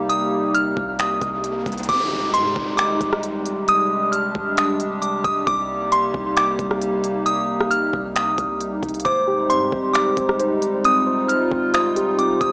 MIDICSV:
0, 0, Header, 1, 8, 480
1, 0, Start_track
1, 0, Tempo, 447761
1, 105, Time_signature, 4, 2, 24, 8
1, 13423, End_track
2, 0, Start_track
2, 0, Title_t, "Synth bell"
2, 0, Program_c, 0, 98
2, 101, Note_on_c, 0, 87, 105
2, 554, Note_off_c, 0, 87, 0
2, 584, Note_on_c, 0, 89, 88
2, 1035, Note_off_c, 0, 89, 0
2, 1065, Note_on_c, 0, 87, 86
2, 1516, Note_off_c, 0, 87, 0
2, 2024, Note_on_c, 0, 86, 105
2, 2476, Note_off_c, 0, 86, 0
2, 2505, Note_on_c, 0, 84, 82
2, 2956, Note_off_c, 0, 84, 0
2, 2972, Note_on_c, 0, 86, 84
2, 3895, Note_off_c, 0, 86, 0
2, 3952, Note_on_c, 0, 87, 112
2, 4400, Note_off_c, 0, 87, 0
2, 4417, Note_on_c, 0, 89, 82
2, 4872, Note_off_c, 0, 89, 0
2, 4908, Note_on_c, 0, 87, 82
2, 5357, Note_off_c, 0, 87, 0
2, 5378, Note_on_c, 0, 86, 72
2, 5609, Note_off_c, 0, 86, 0
2, 5620, Note_on_c, 0, 87, 85
2, 5851, Note_off_c, 0, 87, 0
2, 5863, Note_on_c, 0, 86, 111
2, 6315, Note_off_c, 0, 86, 0
2, 6348, Note_on_c, 0, 84, 90
2, 6798, Note_off_c, 0, 84, 0
2, 6825, Note_on_c, 0, 86, 99
2, 7742, Note_off_c, 0, 86, 0
2, 7781, Note_on_c, 0, 87, 104
2, 8234, Note_off_c, 0, 87, 0
2, 8261, Note_on_c, 0, 89, 90
2, 8714, Note_off_c, 0, 89, 0
2, 8744, Note_on_c, 0, 87, 90
2, 9196, Note_off_c, 0, 87, 0
2, 9700, Note_on_c, 0, 86, 104
2, 10153, Note_off_c, 0, 86, 0
2, 10181, Note_on_c, 0, 84, 84
2, 10634, Note_off_c, 0, 84, 0
2, 10650, Note_on_c, 0, 86, 85
2, 11575, Note_off_c, 0, 86, 0
2, 11632, Note_on_c, 0, 87, 113
2, 12080, Note_off_c, 0, 87, 0
2, 12097, Note_on_c, 0, 89, 76
2, 12552, Note_off_c, 0, 89, 0
2, 12586, Note_on_c, 0, 87, 82
2, 13037, Note_off_c, 0, 87, 0
2, 13064, Note_on_c, 0, 86, 72
2, 13292, Note_off_c, 0, 86, 0
2, 13300, Note_on_c, 0, 87, 80
2, 13423, Note_off_c, 0, 87, 0
2, 13423, End_track
3, 0, Start_track
3, 0, Title_t, "Synth keys"
3, 0, Program_c, 1, 88
3, 9702, Note_on_c, 1, 72, 113
3, 9941, Note_on_c, 1, 67, 92
3, 10185, Note_on_c, 1, 60, 82
3, 10414, Note_off_c, 1, 72, 0
3, 10426, Note_on_c, 1, 72, 94
3, 10888, Note_off_c, 1, 60, 0
3, 10901, Note_on_c, 1, 60, 74
3, 11132, Note_off_c, 1, 72, 0
3, 11145, Note_on_c, 1, 72, 86
3, 11383, Note_off_c, 1, 67, 0
3, 11611, Note_off_c, 1, 60, 0
3, 11624, Note_on_c, 1, 60, 106
3, 11849, Note_off_c, 1, 72, 0
3, 11862, Note_on_c, 1, 72, 95
3, 12334, Note_off_c, 1, 60, 0
3, 12346, Note_on_c, 1, 60, 88
3, 12568, Note_off_c, 1, 72, 0
3, 12581, Note_on_c, 1, 72, 97
3, 12824, Note_on_c, 1, 67, 98
3, 13051, Note_off_c, 1, 60, 0
3, 13064, Note_on_c, 1, 60, 83
3, 13423, Note_off_c, 1, 60, 0
3, 13423, Note_off_c, 1, 67, 0
3, 13423, Note_off_c, 1, 72, 0
3, 13423, End_track
4, 0, Start_track
4, 0, Title_t, "Analog synth pad"
4, 0, Program_c, 2, 89
4, 0, Note_on_c, 2, 48, 85
4, 0, Note_on_c, 2, 55, 81
4, 0, Note_on_c, 2, 58, 80
4, 0, Note_on_c, 2, 63, 78
4, 0, Note_on_c, 2, 67, 88
4, 1983, Note_off_c, 2, 67, 0
4, 1984, Note_off_c, 2, 55, 0
4, 1984, Note_off_c, 2, 58, 0
4, 1984, Note_off_c, 2, 63, 0
4, 1985, Note_off_c, 2, 48, 0
4, 2023, Note_on_c, 2, 55, 81
4, 2023, Note_on_c, 2, 56, 78
4, 2024, Note_on_c, 2, 48, 86
4, 2024, Note_on_c, 2, 63, 78
4, 2024, Note_on_c, 2, 67, 95
4, 3925, Note_off_c, 2, 63, 0
4, 3945, Note_on_c, 2, 62, 75
4, 5826, Note_off_c, 2, 56, 0
4, 5846, Note_off_c, 2, 62, 0
4, 5863, Note_on_c, 2, 58, 82
4, 5864, Note_on_c, 2, 63, 79
4, 9661, Note_off_c, 2, 55, 0
4, 9662, Note_off_c, 2, 67, 0
4, 9665, Note_off_c, 2, 58, 0
4, 9704, Note_on_c, 2, 56, 79
4, 9705, Note_on_c, 2, 55, 76
4, 9705, Note_on_c, 2, 67, 92
4, 11606, Note_off_c, 2, 67, 0
4, 11625, Note_on_c, 2, 65, 96
4, 13423, Note_off_c, 2, 48, 0
4, 13423, Note_off_c, 2, 55, 0
4, 13423, Note_off_c, 2, 56, 0
4, 13423, Note_off_c, 2, 63, 0
4, 13423, Note_off_c, 2, 65, 0
4, 13423, End_track
5, 0, Start_track
5, 0, Title_t, "808-style bass"
5, 0, Program_c, 3, 38
5, 0, Note_on_c, 3, 36, 100
5, 781, Note_off_c, 3, 36, 0
5, 824, Note_on_c, 3, 36, 107
5, 1285, Note_off_c, 3, 36, 0
5, 1303, Note_on_c, 3, 36, 99
5, 1765, Note_off_c, 3, 36, 0
5, 1780, Note_on_c, 3, 36, 105
5, 2013, Note_off_c, 3, 36, 0
5, 2024, Note_on_c, 3, 32, 112
5, 2504, Note_on_c, 3, 44, 103
5, 2520, Note_off_c, 3, 32, 0
5, 2733, Note_off_c, 3, 44, 0
5, 2744, Note_on_c, 3, 32, 106
5, 3205, Note_off_c, 3, 32, 0
5, 3224, Note_on_c, 3, 32, 102
5, 4622, Note_off_c, 3, 32, 0
5, 4664, Note_on_c, 3, 32, 110
5, 5586, Note_off_c, 3, 32, 0
5, 5621, Note_on_c, 3, 32, 101
5, 5853, Note_off_c, 3, 32, 0
5, 5865, Note_on_c, 3, 36, 110
5, 6556, Note_off_c, 3, 36, 0
5, 6585, Note_on_c, 3, 36, 106
5, 7046, Note_off_c, 3, 36, 0
5, 7064, Note_on_c, 3, 36, 104
5, 8462, Note_off_c, 3, 36, 0
5, 8505, Note_on_c, 3, 36, 105
5, 8966, Note_off_c, 3, 36, 0
5, 8986, Note_on_c, 3, 36, 105
5, 9446, Note_off_c, 3, 36, 0
5, 9463, Note_on_c, 3, 36, 106
5, 9694, Note_off_c, 3, 36, 0
5, 9703, Note_on_c, 3, 32, 111
5, 10183, Note_on_c, 3, 44, 100
5, 10199, Note_off_c, 3, 32, 0
5, 10412, Note_off_c, 3, 44, 0
5, 10424, Note_on_c, 3, 32, 106
5, 10885, Note_off_c, 3, 32, 0
5, 10904, Note_on_c, 3, 32, 105
5, 12301, Note_off_c, 3, 32, 0
5, 12344, Note_on_c, 3, 32, 104
5, 13266, Note_off_c, 3, 32, 0
5, 13302, Note_on_c, 3, 32, 102
5, 13423, Note_off_c, 3, 32, 0
5, 13423, End_track
6, 0, Start_track
6, 0, Title_t, "Downlifter"
6, 0, Program_c, 4, 103
6, 2025, Note_on_c, 4, 60, 86
6, 5865, Note_off_c, 4, 60, 0
6, 13423, End_track
7, 0, Start_track
7, 0, Title_t, "Riser"
7, 0, Program_c, 5, 103
7, 105, Note_on_c, 5, 60, 79
7, 2025, Note_off_c, 5, 60, 0
7, 13423, End_track
8, 0, Start_track
8, 0, Title_t, "Drums"
8, 104, Note_on_c, 9, 42, 69
8, 211, Note_off_c, 9, 42, 0
8, 585, Note_on_c, 9, 42, 76
8, 692, Note_off_c, 9, 42, 0
8, 824, Note_on_c, 9, 36, 94
8, 931, Note_off_c, 9, 36, 0
8, 1061, Note_on_c, 9, 42, 81
8, 1068, Note_on_c, 9, 26, 112
8, 1168, Note_off_c, 9, 42, 0
8, 1176, Note_off_c, 9, 26, 0
8, 1302, Note_on_c, 9, 42, 66
8, 1303, Note_on_c, 9, 36, 87
8, 1409, Note_off_c, 9, 42, 0
8, 1410, Note_off_c, 9, 36, 0
8, 1542, Note_on_c, 9, 42, 70
8, 1649, Note_off_c, 9, 42, 0
8, 1781, Note_on_c, 9, 36, 92
8, 1784, Note_on_c, 9, 42, 46
8, 1843, Note_off_c, 9, 42, 0
8, 1843, Note_on_c, 9, 42, 55
8, 1888, Note_off_c, 9, 36, 0
8, 1904, Note_off_c, 9, 42, 0
8, 1904, Note_on_c, 9, 42, 65
8, 1964, Note_off_c, 9, 42, 0
8, 1964, Note_on_c, 9, 42, 75
8, 2024, Note_off_c, 9, 42, 0
8, 2024, Note_on_c, 9, 36, 116
8, 2024, Note_on_c, 9, 42, 72
8, 2024, Note_on_c, 9, 49, 103
8, 2131, Note_off_c, 9, 36, 0
8, 2131, Note_off_c, 9, 42, 0
8, 2131, Note_off_c, 9, 49, 0
8, 2507, Note_on_c, 9, 42, 83
8, 2614, Note_off_c, 9, 42, 0
8, 2744, Note_on_c, 9, 36, 97
8, 2852, Note_off_c, 9, 36, 0
8, 2983, Note_on_c, 9, 42, 77
8, 2990, Note_on_c, 9, 26, 114
8, 3090, Note_off_c, 9, 42, 0
8, 3097, Note_off_c, 9, 26, 0
8, 3224, Note_on_c, 9, 36, 90
8, 3224, Note_on_c, 9, 42, 69
8, 3331, Note_off_c, 9, 36, 0
8, 3331, Note_off_c, 9, 42, 0
8, 3351, Note_on_c, 9, 37, 97
8, 3458, Note_off_c, 9, 37, 0
8, 3464, Note_on_c, 9, 42, 73
8, 3571, Note_off_c, 9, 42, 0
8, 3704, Note_on_c, 9, 42, 72
8, 3812, Note_off_c, 9, 42, 0
8, 3944, Note_on_c, 9, 42, 73
8, 4051, Note_off_c, 9, 42, 0
8, 4425, Note_on_c, 9, 42, 85
8, 4532, Note_off_c, 9, 42, 0
8, 4664, Note_on_c, 9, 36, 93
8, 4771, Note_off_c, 9, 36, 0
8, 4902, Note_on_c, 9, 42, 82
8, 4910, Note_on_c, 9, 26, 114
8, 5010, Note_off_c, 9, 42, 0
8, 5017, Note_off_c, 9, 26, 0
8, 5143, Note_on_c, 9, 42, 69
8, 5250, Note_off_c, 9, 42, 0
8, 5384, Note_on_c, 9, 42, 74
8, 5491, Note_off_c, 9, 42, 0
8, 5622, Note_on_c, 9, 36, 94
8, 5623, Note_on_c, 9, 42, 78
8, 5729, Note_off_c, 9, 36, 0
8, 5730, Note_off_c, 9, 42, 0
8, 5864, Note_on_c, 9, 36, 117
8, 5865, Note_on_c, 9, 42, 73
8, 5971, Note_off_c, 9, 36, 0
8, 5972, Note_off_c, 9, 42, 0
8, 6346, Note_on_c, 9, 42, 84
8, 6453, Note_off_c, 9, 42, 0
8, 6584, Note_on_c, 9, 36, 91
8, 6692, Note_off_c, 9, 36, 0
8, 6825, Note_on_c, 9, 42, 79
8, 6832, Note_on_c, 9, 26, 114
8, 6932, Note_off_c, 9, 42, 0
8, 6939, Note_off_c, 9, 26, 0
8, 7064, Note_on_c, 9, 36, 96
8, 7065, Note_on_c, 9, 42, 69
8, 7172, Note_off_c, 9, 36, 0
8, 7172, Note_off_c, 9, 42, 0
8, 7192, Note_on_c, 9, 37, 92
8, 7299, Note_off_c, 9, 37, 0
8, 7306, Note_on_c, 9, 42, 70
8, 7413, Note_off_c, 9, 42, 0
8, 7545, Note_on_c, 9, 42, 76
8, 7652, Note_off_c, 9, 42, 0
8, 7785, Note_on_c, 9, 42, 72
8, 7892, Note_off_c, 9, 42, 0
8, 8153, Note_on_c, 9, 37, 95
8, 8260, Note_off_c, 9, 37, 0
8, 8267, Note_on_c, 9, 42, 82
8, 8375, Note_off_c, 9, 42, 0
8, 8505, Note_on_c, 9, 36, 97
8, 8612, Note_off_c, 9, 36, 0
8, 8744, Note_on_c, 9, 42, 81
8, 8752, Note_on_c, 9, 26, 113
8, 8851, Note_off_c, 9, 42, 0
8, 8859, Note_off_c, 9, 26, 0
8, 8984, Note_on_c, 9, 36, 94
8, 8984, Note_on_c, 9, 42, 70
8, 9091, Note_off_c, 9, 42, 0
8, 9092, Note_off_c, 9, 36, 0
8, 9225, Note_on_c, 9, 42, 75
8, 9332, Note_off_c, 9, 42, 0
8, 9462, Note_on_c, 9, 36, 91
8, 9465, Note_on_c, 9, 42, 46
8, 9525, Note_off_c, 9, 42, 0
8, 9525, Note_on_c, 9, 42, 57
8, 9569, Note_off_c, 9, 36, 0
8, 9585, Note_off_c, 9, 42, 0
8, 9585, Note_on_c, 9, 42, 72
8, 9645, Note_off_c, 9, 42, 0
8, 9645, Note_on_c, 9, 42, 81
8, 9704, Note_on_c, 9, 36, 116
8, 9705, Note_off_c, 9, 42, 0
8, 9705, Note_on_c, 9, 42, 71
8, 9811, Note_off_c, 9, 36, 0
8, 9812, Note_off_c, 9, 42, 0
8, 10186, Note_on_c, 9, 42, 79
8, 10293, Note_off_c, 9, 42, 0
8, 10423, Note_on_c, 9, 36, 97
8, 10531, Note_off_c, 9, 36, 0
8, 10662, Note_on_c, 9, 42, 84
8, 10669, Note_on_c, 9, 26, 109
8, 10769, Note_off_c, 9, 42, 0
8, 10777, Note_off_c, 9, 26, 0
8, 10902, Note_on_c, 9, 42, 67
8, 10903, Note_on_c, 9, 36, 91
8, 11009, Note_off_c, 9, 42, 0
8, 11010, Note_off_c, 9, 36, 0
8, 11031, Note_on_c, 9, 37, 93
8, 11139, Note_off_c, 9, 37, 0
8, 11144, Note_on_c, 9, 42, 75
8, 11251, Note_off_c, 9, 42, 0
8, 11385, Note_on_c, 9, 42, 74
8, 11493, Note_off_c, 9, 42, 0
8, 11626, Note_on_c, 9, 42, 71
8, 11733, Note_off_c, 9, 42, 0
8, 12106, Note_on_c, 9, 42, 81
8, 12214, Note_off_c, 9, 42, 0
8, 12344, Note_on_c, 9, 36, 94
8, 12451, Note_off_c, 9, 36, 0
8, 12583, Note_on_c, 9, 42, 81
8, 12591, Note_on_c, 9, 26, 113
8, 12690, Note_off_c, 9, 42, 0
8, 12698, Note_off_c, 9, 26, 0
8, 12825, Note_on_c, 9, 42, 69
8, 12932, Note_off_c, 9, 42, 0
8, 13064, Note_on_c, 9, 42, 69
8, 13171, Note_off_c, 9, 42, 0
8, 13302, Note_on_c, 9, 36, 96
8, 13305, Note_on_c, 9, 42, 72
8, 13409, Note_off_c, 9, 36, 0
8, 13412, Note_off_c, 9, 42, 0
8, 13423, End_track
0, 0, End_of_file